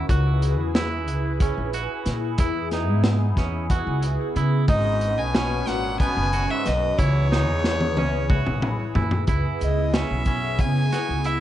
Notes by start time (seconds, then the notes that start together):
0.09 C#2 E4 F#4 G#4 B4, kick, closed hi-hat
0.42 closed hi-hat
0.59 E2
0.75 E4, snare, closed hi-hat
1.08 C#2, closed hi-hat
1.40 C#4, kick, closed hi-hat
1.57 A#1
1.73 F#4, closed hi-hat
2.06 A#2, snare, closed hi-hat
2.38 E2 B3 E4 G#4, kick, closed hi-hat
2.71 D#4, snare, closed hi-hat
2.89 G#2
3.04 snare, closed hi-hat
3.37 E2 C#4, kick, snare, closed hi-hat
3.70 F#4, kick, closed hi-hat
3.87 C#2
4.02 closed hi-hat
4.36 C#3 E4, closed hi-hat
4.68 G#1 G#2 C#4 D#4 F#4 B4 D#5, kick, closed hi-hat
5.01 closed hi-hat
5.18 B1 B2 G#5
5.35 C#4, snare, closed hi-hat
5.67 G#1 A#2 F#5, snare, closed hi-hat
6.00 B2 B3 G#5, kick, closed hi-hat
6.17 F#1
6.33 F#4, closed hi-hat
6.50 G#2 E5
6.66 B1 F#2 D#5, snare, closed hi-hat
6.98 C#2 E2 E4 G#4 B4 C#5, kick, closed hi-hat
7.32 D#4, snare
7.48 E2
7.64 snare
7.81 high tom
7.96 C#2 C#4, high tom
8.30 F#4, kick, mid tom
8.47 A#1, mid tom
8.62 mid tom
8.95 A#2 E4, floor tom
9.11 floor tom
9.27 C#2 B3 E4 G#4, kick, closed hi-hat
9.61 C#2 D#5, closed hi-hat
9.94 C#4 E5, snare, closed hi-hat
10.11 B1
10.26 C#4, kick, closed hi-hat
10.59 C#3 G#5, kick, closed hi-hat
10.92 F#4, snare, closed hi-hat
11.09 C#2
11.24 E4 E5, closed hi-hat